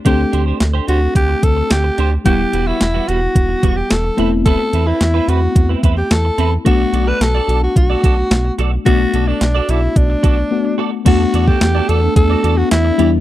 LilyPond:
<<
  \new Staff \with { instrumentName = "Clean electric guitar" } { \time 4/4 \key b \phrygian \tempo 4 = 109 <d' g' c''>16 r16 <d' g' c''>16 <d' g' c''>16 r16 <d' g' c''>16 <d' g' c''>16 r4. r16 <d' g' c''>16 r16 | <g b fis'>16 r16 <g b fis'>16 <g b fis'>16 r16 <g b fis'>16 <g b fis'>16 r8. <g b fis'>16 r8. <c' e' b'>16 r16 | <c' e' b'>16 r16 <c' e' b'>16 <c' e' b'>16 r16 <c' e' b'>16 <c' e' b'>16 r8 <c' e' b'>16 <c' e' b'>16 r8. <c' e' b'>16 r16 | <fis' a' d''>16 r16 <fis' a' d''>16 <fis' a' d''>16 r16 <fis' a' d''>16 <fis' a' d''>16 r8 <fis' a' d''>16 <fis' a' d''>16 r8. <fis' a' d''>16 r16 |
<fis' a' d''>16 r16 <fis' a' d''>16 <fis' a' d''>16 r16 <fis' a' d''>16 <fis' a' d''>16 r8. <fis' a' d''>16 r8. <fis' a' d''>16 r16 | <fis' a' d''>16 r16 <fis' a' d''>16 <fis' a' d''>16 r16 <fis' a' d''>16 <fis' a' d''>16 r8 <fis' a' d''>16 <fis' a' d''>16 r8. <e' g' d''>16 r16 | }
  \new Staff \with { instrumentName = "Alto saxophone" } { \time 4/4 \key b \phrygian g'8. r8. fis'8 g'8 a'8 g'8. r16 | g'8. e'8. fis'4~ fis'16 g'16 a'8. r16 | a'8. e'8. fis'8. r8 g'16 a'8. r16 | fis'8. b'16 a'8. fis'16 fis'4. r8 |
fis'8. d'8. e'8 d'4. r8 | fis'8. g'8. a'8 a'8. fis'16 e'8. r16 | }
  \new Staff \with { instrumentName = "FM electric piano" } { \time 4/4 \key b \phrygian <a c' d' a'>1 | <g b e' fis''>2.~ <g b e' fis''>8 <a b c' e'>8~ | <a b c' e'>2.~ <a b c' e'>8 r8 | <a b d' fis'>1 |
<a b d' fis'>2. <a b d' fis'>4 | <a b d' fis''>2.~ <a b d' fis''>8 <g b d' e'>8 | }
  \new Staff \with { instrumentName = "String machine" } { \time 4/4 \key b \phrygian r1 | r1 | r1 | r1 |
r1 | <a b d'>2.~ <a b d'>8 <e g b>8 | }
  \new Staff \with { instrumentName = "Analog synth bass" } { \clef bass \time 4/4 \key b \phrygian d,8 d,8 d,8 d,8 d,8 d,8 d,8 d,8 | e,,8 e,,8 e,,8 e,,8 e,,8 e,,8 e,,8 e,,8~ | e,,8 e,8 e,8 e,8 e,8 e,8 e,8 e,8 | b,,8 b,,8 b,,8 b,,8 b,,8 b,,8 b,,8 b,,8 |
b,,8 b,,8 b,,8 b,,8 b,,8 b,,8 r4 | e,8 e,8 e,8 e,8 e,8 e,8 e,8 e,8 | }
  \new DrumStaff \with { instrumentName = "Drums" } \drummode { \time 4/4 <hh bd>8 hh8 <hh sn>8 hh8 <hh bd>8 <hh bd>8 <hh sn>8 hh8 | <hh bd>8 hh8 <hh sn>8 hh8 <hh bd>8 <hh bd>8 <hh sn>8 hh8 | <hh bd>8 hh8 <hh sn>8 hh8 <hh bd>8 <hh bd>8 <hh sn>8 hh8 | <hh bd>8 hh8 <hh sn>8 hh8 <hh bd>8 <hh bd>8 <hh sn>8 hh8 |
<hh bd>8 hh8 <hh sn>8 hh8 <hh bd>8 <hh bd>8 r4 | <cymc hh bd>8 hh16 bd16 <hh sn>8 hh8 <hh bd>8 hh8 <hh sn>8 hh8 | }
>>